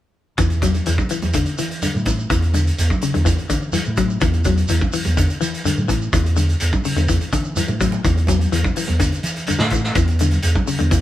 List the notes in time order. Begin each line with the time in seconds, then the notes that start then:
0.38 E2 E3, kick, closed hi-hat, high conga, shekere
0.50 closed hi-hat, shekere
0.62 F#3, kick, closed hi-hat, high conga, shekere
0.74 closed hi-hat, high conga, shekere
0.86 E2 E3, closed hi-hat, high conga, shekere
0.98 kick, high conga, shekere
1.09 E3, muted fingered electric bass stroke, closed hi-hat, shekere
1.22 E2, closed hi-hat, high conga, shekere
1.33 D3, kick, closed hi-hat, high conga, shekere
1.46 closed hi-hat, shekere
1.58 E3, closed hi-hat, shekere
1.70 closed hi-hat, shekere
1.82 D3, closed hi-hat, high conga, shekere
1.94 A2, high conga, shekere
2.05 E3, kick, closed hi-hat, shekere
2.19 shekere
2.30 E2 E3, kick, closed hi-hat, shekere
2.42 closed hi-hat, shekere
2.54 D3, closed hi-hat, high conga, shekere
2.67 closed hi-hat, shekere
2.78 E2, closed hi-hat, high conga, shekere
2.90 kick, high conga, shekere
3.01 C#3, muted fingered electric bass stroke, closed hi-hat, shekere
3.14 E2 D3, closed hi-hat, high conga, shekere
3.25 E3, kick, closed hi-hat, high conga, shekere
3.38 closed hi-hat, shekere
3.50 D3 E3, kick, closed hi-hat, shekere
3.62 shekere
3.72 E3, closed hi-hat, high conga, shekere
3.85 A2, shekere
3.97 F#3, kick, closed hi-hat, shekere
4.10 shekere
4.21 E2 E3, kick, closed hi-hat, shekere
4.33 closed hi-hat, shekere
4.44 F#3, kick, closed hi-hat, high conga, shekere
4.57 closed hi-hat, shekere
4.68 E2 E3, closed hi-hat, high conga, shekere
4.81 kick, high conga, shekere
4.93 E3, muted fingered electric bass stroke, open hi-hat, shekere
5.05 E2, closed hi-hat, high conga, shekere
5.17 D3, kick, closed hi-hat, high conga, shekere
5.30 closed hi-hat, shekere
5.41 E3, closed hi-hat, shekere
5.54 closed hi-hat, shekere
5.65 D3, closed hi-hat, high conga, shekere
5.77 A2, high conga, shekere
5.88 E3, kick, closed hi-hat, shekere
6.01 shekere
6.13 E2 E3, kick, closed hi-hat, high conga, shekere
6.25 closed hi-hat, shekere
6.36 D3, closed hi-hat, high conga, shekere
6.49 closed hi-hat, shekere
6.60 E2, closed hi-hat, high conga, shekere
6.73 kick, high conga, shekere
6.84 C#3, muted fingered electric bass stroke, open hi-hat, shekere
6.96 E2 D3, closed hi-hat, high conga, shekere
7.08 E3, kick, closed hi-hat, high conga, shekere
7.21 closed hi-hat, shekere
7.33 D3 E3, kick, closed hi-hat, shekere
7.44 shekere
7.56 E3, closed hi-hat, high conga, shekere
7.67 A2, high conga, shekere
7.80 F#3, kick, closed hi-hat, low conga, shekere
7.92 low conga, shekere
8.04 E2 E3, kick, closed hi-hat, high conga, shekere
8.17 closed hi-hat, shekere
8.27 F#3, kick, closed hi-hat, high conga, shekere
8.39 closed hi-hat, high conga, shekere
8.51 E2 E3, closed hi-hat, high conga, shekere
8.64 kick, high conga, shekere
8.76 E3, muted fingered electric bass stroke, open hi-hat, shekere
8.88 E2, closed hi-hat, high conga, shekere
8.99 D3, kick, closed hi-hat, high conga, shekere
9.12 closed hi-hat, shekere
9.23 E3, closed hi-hat, shekere
9.36 closed hi-hat, shekere
9.47 D3, closed hi-hat, high conga, shekere
9.59 A2, snare
9.70 E3, kick, closed hi-hat, shekere
9.84 snare, shekere
9.95 E2 E3, kick, closed hi-hat, shekere
10.08 closed hi-hat, shekere
10.19 D3, closed hi-hat, high conga, shekere
10.31 closed hi-hat, high conga, shekere
10.42 E2, closed hi-hat, high conga, shekere
10.55 kick, high conga, shekere
10.67 C#3, muted fingered electric bass stroke, open hi-hat, shekere
10.79 E2 D3, closed hi-hat, high conga, shekere
10.91 E3, kick, closed hi-hat, shekere